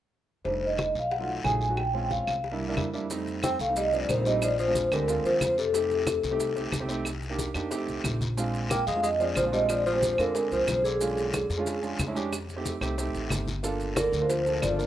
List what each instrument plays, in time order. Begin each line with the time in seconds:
0.45 upright bass F1, grand piano G3 A3 D4 D#4, vibraphone C5, high bongo, high conga, long guiro
0.62 vibraphone D#5, high conga
0.78 high bongo, high conga, short guiro, claves
0.95 upright bass B1, high conga, short guiro
0.99 vibraphone F5
1.11 vibraphone F#5, high bongo, high conga, long guiro
1.19 grand piano F#3 A3 D#4 F4
1.28 high conga
1.44 upright bass A#1, grand piano F#3 A3 D#4 G#4, vibraphone G#5, high bongo, low bongo, high conga, short guiro, claves
1.61 high conga, short guiro
1.69 grand piano F#3 A3 D#4 F#4
1.77 vibraphone G5, high bongo, high conga, long guiro, claves
1.94 grand piano G#3 C4 C#4 F4, high bongo, high conga
2.10 vibraphone F5, high bongo, high conga, short guiro
2.27 upright bass C2, high bongo, short guiro, claves
2.44 high bongo, high conga, long guiro
2.52 grand piano G3 A#3 D4 E4
2.61 high bongo, high conga
2.69 grand piano G3 A#3 D4 E4
2.77 upright bass F2, high bongo, low bongo, high conga, short guiro, claves
2.94 grand piano G3 A#3 D4 E4, short guiro
3.10 grand piano G3 A3 C4 D#4, high bongo, high conga, long guiro, maracas
3.27 high conga, maracas
3.43 tenor saxophone C4, vibraphone G5, high bongo, high conga, short guiro, claves, maracas
3.59 upright bass C2, tenor saxophone A3, vibraphone F5, high conga, short guiro, maracas
3.68 grand piano G3 A3 C4 D#4
3.76 tenor saxophone G3, vibraphone D#5, high bongo, high conga, long guiro, maracas
3.93 tenor saxophone F3, grand piano G3 A3 C4 D4, vibraphone D5, high conga, maracas
4.09 upright bass A#1, tenor saxophone D#3, vibraphone C5, high bongo, low bongo, high conga, short guiro, claves, maracas
4.17 grand piano G3 A3 C4 D#4
4.25 grand piano G3 A3 C4 D#4, tenor saxophone G3, vibraphone D#5, high conga, short guiro, maracas
4.42 tenor saxophone F3, vibraphone D5, high bongo, high conga, long guiro, claves, maracas
4.58 tenor saxophone F3, vibraphone C5, high bongo, high conga, maracas
4.67 grand piano G#3 C4 D4 F4
4.75 high bongo, high conga, short guiro, maracas
4.91 upright bass D2, tenor saxophone D3, grand piano G#3 C4 D4 G4, vibraphone A#4, high bongo, short guiro, claves, maracas
5.08 grand piano G#3 C4 D4 F4, high bongo, high conga, long guiro, maracas
5.24 upright bass D#2, tenor saxophone F3, vibraphone C5, high bongo, high conga, maracas
5.41 upright bass F2, high bongo, low bongo, high conga, short guiro, claves, maracas
5.58 tenor saxophone C3, vibraphone A4, short guiro, maracas
5.73 grand piano A3 C4 D#4 G4, high bongo, high conga, long guiro, maracas
5.91 high conga, maracas
6.07 high bongo, high conga, short guiro, claves, maracas
6.23 upright bass C2, high conga, short guiro, maracas
6.31 grand piano A3 C4 D#4 G4
6.39 high bongo, high conga, long guiro, maracas
6.55 grand piano A3 C4 D#4 G4, high conga, maracas
6.72 upright bass C2, high bongo, low bongo, high conga, short guiro, claves, maracas
6.80 grand piano A3 C4 D#4 G4
6.88 grand piano A3 C4 D#4 G4, high conga, short guiro, maracas
7.05 high bongo, high conga, long guiro, claves, maracas
7.22 high bongo, high conga, maracas
7.30 grand piano A#3 D4 D#4 G4
7.39 high bongo, high conga, short guiro, maracas
7.54 upright bass F2, grand piano A#3 D4 D#4 G4, high bongo, short guiro, claves, maracas
7.70 grand piano A3 C4 D#4 G4, high bongo, high conga, long guiro, maracas
7.88 upright bass C2, high bongo, high conga, maracas
8.04 upright bass A#1, high bongo, low bongo, high conga, short guiro, claves, maracas
8.21 high conga, short guiro, maracas
8.37 grand piano G#3 C4 D4 F4, high bongo, long guiro, maracas
8.54 high conga, maracas
8.70 tenor saxophone A#3, vibraphone G5, high bongo, high conga, short guiro, claves, maracas
8.87 upright bass F2, tenor saxophone G#3, vibraphone F5, high conga, short guiro, maracas
8.95 grand piano G#3 C4 D4 F4
9.03 tenor saxophone G#3, vibraphone D#5, high bongo, high conga, long guiro, maracas
9.20 tenor saxophone F3, grand piano G#3 C4 D4 G#4, vibraphone D5, high conga, maracas
9.35 upright bass A#1, tenor saxophone F3, vibraphone C5, high bongo, low bongo, high conga, short guiro, claves, maracas
9.44 grand piano G#3 C4 D4 F4
9.52 tenor saxophone G3, grand piano G#3 C4 D4 F4, vibraphone D#5, high conga, short guiro, maracas
9.69 tenor saxophone F3, vibraphone D5, high bongo, high conga, long guiro, claves, maracas
9.86 tenor saxophone F3, vibraphone C5, high bongo, high conga, maracas
9.93 grand piano G#3 C4 D4 G4
10.02 high bongo, high conga, short guiro, maracas
10.18 upright bass F2, tenor saxophone D3, grand piano G#3 C4 D4 F4, vibraphone A#4, high bongo, short guiro, claves, maracas
10.35 grand piano G#3 C4 D4 G#4, high bongo, high conga, long guiro, maracas
10.51 upright bass C2, tenor saxophone F3, vibraphone C5, high bongo, high conga, maracas
10.67 upright bass B1, high bongo, low bongo, high conga, short guiro, claves, maracas
10.84 tenor saxophone D3, vibraphone G#4, short guiro, maracas
11.01 grand piano G#3 C#4 D4 F4, high bongo, high conga, long guiro, maracas
11.17 high conga, maracas
11.34 high bongo, high conga, short guiro, claves, maracas
11.50 upright bass F2, high conga, short guiro, maracas
11.58 grand piano G#3 C#4 D4 F4
11.66 high bongo, high conga, long guiro, maracas
11.82 grand piano G#3 C#4 D4 F4, high conga, maracas
11.99 upright bass F2, high bongo, low bongo, high conga, short guiro, claves, maracas
12.07 grand piano G#3 C#4 D4 E4
12.15 grand piano G#3 C#4 D4 G4, high conga, short guiro, maracas
12.33 high bongo, high conga, long guiro, claves, maracas
12.49 high bongo, high conga, maracas
12.56 grand piano A3 C4 D#4 G4
12.65 high bongo, high conga, short guiro, maracas
12.81 upright bass C2, grand piano A3 C4 D#4 G4, high bongo, short guiro, claves, maracas
12.98 grand piano A3 C4 D#4 G4, high bongo, high conga, long guiro, maracas
13.14 upright bass A1, high bongo, high conga, maracas
13.30 upright bass G1, high bongo, low bongo, high conga, short guiro, claves, maracas
13.47 high conga, short guiro, maracas
13.63 grand piano A#3 D4 F4 A4, high bongo, long guiro, maracas
13.80 high conga, maracas
13.96 tenor saxophone D3, vibraphone A#4, high bongo, high conga, short guiro, claves, maracas
14.12 upright bass D2, high conga, short guiro, maracas
14.21 grand piano A#3 D4 F4 C5
14.29 tenor saxophone F3, vibraphone C5, high bongo, high conga, long guiro, maracas
14.45 grand piano A#3 D4 F4 A4, high conga, maracas
14.61 upright bass G1, tenor saxophone F3, vibraphone D5, high bongo, low bongo, high conga, short guiro, claves, maracas
14.70 grand piano A#3 D4 F4 A4
14.78 grand piano A#3 D4 F4 A#4, high conga, short guiro, maracas